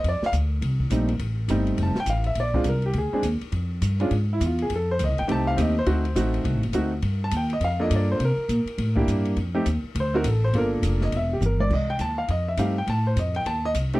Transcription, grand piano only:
0.09 0.24 D5 medium
0.26 0.32 F5 loud
0.91 1.08 G3 medium
0.91 1.08 A3 medium
0.91 1.08 C4 medium
0.91 1.08 D#4 medium
1.50 1.93 G3 medium
1.50 1.94 A3 medium
1.50 1.93 C4 medium
1.50 1.93 D#4 medium
1.83 1.98 A5 medium
2.00 2.09 G5 loud
2.10 2.26 F5 medium
2.27 2.37 E5 medium
2.40 2.65 D5 medium
2.54 2.64 G#3 medium
2.54 2.64 C4 medium
2.54 2.64 D4 medium
2.54 2.65 F4 medium
2.69 2.85 A#4 medium
2.86 2.96 G4 medium
2.98 3.12 G#4 medium
3.13 3.23 G#3 medium
3.13 3.23 C4 medium
3.13 3.23 D4 medium
3.13 3.23 G#4 medium
4.00 4.10 G#3 medium
4.00 4.11 C#4 medium
4.00 4.11 D4 medium
4.00 4.11 F4 medium
4.33 4.42 E4 medium
4.46 4.61 F4 medium
4.62 4.71 G#4 medium
4.76 4.90 A4 medium
4.91 5.00 C5 medium
5.04 5.19 D#5 medium
5.19 5.29 G5 medium
5.28 5.56 A3 medium
5.28 5.55 C4 medium
5.28 5.55 D#4 medium
5.28 5.55 G4 medium
5.28 5.48 A5 loud
5.47 5.58 F5 loud
5.56 5.74 A3 medium
5.56 5.73 C4 medium
5.56 5.73 D#4 medium
5.56 5.74 G4 medium
5.56 5.76 D#5 medium
5.79 6.42 C5 loud
5.86 6.03 A3 medium
5.86 6.03 C4 medium
5.86 6.03 D#4 medium
5.86 6.03 F#4 medium
6.16 6.60 A3 medium
6.16 6.60 C4 medium
6.16 6.59 D#4 medium
6.16 6.60 F#4 medium
6.74 6.91 A3 medium
6.74 6.91 C4 medium
6.74 6.91 D#4 medium
6.74 6.91 F#4 medium
7.24 7.34 A5 loud
7.37 7.52 G5 medium
7.53 7.63 D#5 medium
7.64 7.81 F5 medium
7.79 8.18 A#3 medium
7.79 8.18 D4 medium
7.79 8.18 F4 medium
7.79 8.18 A4 medium
7.79 7.91 D#5 medium
7.96 8.11 D5 medium
8.12 8.21 C5 medium
8.25 9.06 A#4 medium
8.96 9.34 A#3 medium
8.96 9.35 D4 medium
8.96 9.35 E4 medium
8.96 9.35 G4 medium
9.55 9.65 A3 medium
9.55 9.65 C4 medium
9.55 9.65 D#4 medium
9.55 9.65 G4 medium
10.00 10.15 C5 medium
10.14 10.24 A3 medium
10.14 10.24 C4 medium
10.14 10.24 D#4 medium
10.14 10.24 F#4 medium
10.14 10.25 A#4 loud
10.28 10.44 A4 medium
10.44 10.54 C5 loud
10.55 11.13 A#3 medium
10.55 11.13 D4 medium
10.55 11.13 F4 medium
10.55 11.13 A4 medium
10.55 10.68 A#4 loud
11.03 11.13 D#5 medium
11.16 11.32 E5 loud
11.33 11.42 G4 medium
11.46 11.61 A#4 medium
11.60 11.71 D5 loud
11.74 11.90 D#5 medium
11.90 12.00 G5 loud
12.01 12.18 A5 loud
12.18 12.29 F5 medium
12.30 12.47 D#5 medium
12.48 12.58 E5 medium
12.59 12.75 A3 medium
12.59 12.75 C4 medium
12.59 12.75 D#4 medium
12.59 12.75 G4 medium
12.59 12.77 F5 medium
12.78 12.88 G5 medium
12.90 13.06 A5 loud
13.07 13.17 C5 medium
13.19 13.36 D#5 medium
13.36 13.46 G5 loud
13.47 13.64 A5 loud
13.65 13.72 D#5 loud
13.94 14.00 A3 medium
13.94 14.00 C4 medium
13.94 14.00 D#4 medium
13.94 14.00 G4 loud

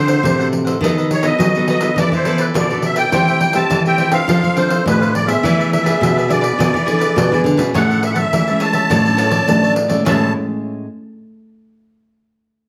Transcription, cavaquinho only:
0.07 0.37 A4 medium
0.07 0.36 C5 medium
0.07 0.36 F#5 medium
0.39 0.51 A4 soft
0.39 0.52 C5 soft
0.39 0.52 F#5 soft
0.52 muted cavaquinho stroke soft
0.65 0.80 A4 soft
0.65 0.80 C5 soft
0.65 0.79 F#5 soft
0.82 0.95 D#4 medium
0.82 0.95 A4 medium
0.82 0.96 B4 medium
0.82 0.96 D#5 medium
0.97 1.10 A4 soft
0.97 1.10 B4 soft
0.97 1.10 D#5 soft
1.11 muted cavaquinho stroke soft
1.23 1.53 A4 medium
1.23 1.52 B4 medium
1.23 1.52 D#5 medium
1.56 1.68 A4 soft
1.56 1.68 B4 soft
1.56 1.68 D#5 soft
1.68 1.81 D#4 soft
1.68 1.82 A4 medium
1.68 1.81 B4 medium
1.68 1.79 D#5 medium
1.81 1.96 A4 medium
1.81 1.96 B4 medium
1.81 1.95 D#5 medium
1.98 2.11 E4 medium
1.98 2.11 A4 medium
1.98 2.11 B4 medium
1.98 2.12 D5 medium
2.13 2.25 A4 soft
2.13 2.25 B4 soft
2.13 2.26 D5 medium
2.25 2.39 E4 medium
2.25 2.39 A4 medium
2.25 2.39 B4 medium
2.25 2.37 D5 medium
2.38 2.68 A4 medium
2.38 2.68 B4 medium
2.38 2.67 D5 medium
2.71 2.82 A4 soft
2.71 2.83 B4 soft
2.71 2.83 D5 soft
2.83 muted cavaquinho stroke soft
2.96 3.11 A4 soft
2.96 3.11 B4 soft
2.96 3.11 D5 soft
3.13 3.26 A4 medium
3.13 3.26 C5 medium
3.13 3.27 E5 medium
3.13 3.27 G5 medium
3.28 3.40 C5 soft
3.28 3.41 E5 soft
3.28 3.41 G5 soft
3.42 muted cavaquinho stroke soft
3.54 3.84 C5 medium
3.54 3.83 E5 medium
3.54 3.83 G5 medium
3.86 3.98 C5 soft
3.86 3.99 E5 soft
3.86 3.99 G5 soft
3.98 4.12 A4 soft
3.98 4.12 C5 soft
3.98 4.11 E5 medium
3.98 4.10 G5 medium
4.11 4.27 C5 medium
4.11 4.27 E5 medium
4.11 4.26 G5 medium
4.28 4.42 D4 medium
4.28 4.42 A4 medium
4.28 4.43 C5 medium
4.28 4.42 F5 medium
4.43 4.55 A4 soft
4.43 4.56 C5 soft
4.43 4.56 F5 soft
4.56 4.70 D4 medium
4.56 4.70 A4 medium
4.56 4.69 C5 medium
4.56 4.67 F5 medium
4.68 4.99 A4 medium
4.68 4.99 C5 medium
4.68 4.98 F5 medium
5.01 5.12 A4 soft
5.01 5.12 C5 soft
5.01 5.13 F5 medium
5.13 muted cavaquinho stroke soft
5.26 5.42 A4 soft
5.26 5.42 C5 soft
5.26 5.41 F5 soft
5.43 5.57 E4 medium
5.43 5.57 G#4 medium
5.43 5.57 B4 medium
5.43 5.57 D5 medium
5.58 5.70 G#4 soft
5.58 5.70 B4 soft
5.58 5.71 D5 soft
5.71 muted cavaquinho stroke soft
5.83 6.14 G#4 medium
5.83 6.14 B4 medium
5.83 6.13 D5 medium
6.16 6.28 G#4 soft
6.16 6.29 B4 soft
6.16 6.29 D5 soft
6.28 6.43 E4 medium
6.28 6.42 G#4 medium
6.28 6.41 B4 medium
6.28 6.40 D5 medium
6.41 6.57 G#4 medium
6.41 6.57 B4 medium
6.41 6.56 D5 medium
6.58 6.72 E4 medium
6.58 6.73 G#4 medium
6.58 6.73 B4 medium
6.58 6.72 D5 medium
6.73 6.85 G#4 soft
6.73 6.86 B4 soft
6.73 6.86 D5 soft
6.86 7.00 E4 medium
6.86 7.00 G#4 medium
6.86 6.99 B4 medium
6.86 6.97 D5 medium
6.99 7.30 G#4 medium
6.99 7.29 B4 medium
6.99 7.29 D5 medium
7.31 7.43 G#4 soft
7.31 7.43 B4 soft
7.31 7.44 D5 soft
7.44 muted cavaquinho stroke soft
7.57 7.73 G#4 soft
7.57 7.73 B4 soft
7.57 7.72 D5 soft
7.74 7.88 G#4 medium
7.74 7.88 C#5 medium
7.74 7.89 E5 medium
7.74 7.88 A5 medium
7.89 8.01 C#5 soft
7.89 8.02 E5 soft
7.89 8.02 A5 soft
8.02 muted cavaquinho stroke soft
8.15 8.45 C#5 medium
8.15 8.45 E5 medium
8.15 8.44 A5 medium
8.47 8.59 C#5 soft
8.47 8.60 E5 soft
8.47 8.61 A5 soft
8.60 8.74 G#4 medium
8.60 8.74 C#5 medium
8.60 8.73 E5 medium
8.60 8.72 A5 medium
8.73 8.89 C#5 medium
8.73 8.88 E5 medium
8.73 8.88 A5 medium
8.89 9.03 F#4 medium
8.89 9.04 A4 medium
8.89 9.04 C#5 medium
8.89 9.03 D5 medium
9.04 9.16 A4 soft
9.04 9.17 C#5 soft
9.04 9.17 D5 soft
9.17 9.31 F#4 medium
9.17 9.31 A4 medium
9.17 9.30 C#5 medium
9.17 9.29 D5 medium
9.30 9.61 A4 medium
9.30 9.60 C#5 medium
9.30 9.60 D5 medium
9.62 9.74 A4 soft
9.62 9.74 C#5 soft
9.62 9.75 D5 soft
9.75 muted cavaquinho stroke soft
9.88 10.04 A4 soft
9.88 10.04 C#5 soft
9.88 10.03 D5 medium
10.05 10.29 G#4 medium
10.05 10.29 C#5 medium
10.05 10.29 E5 medium
10.05 10.30 A5 medium

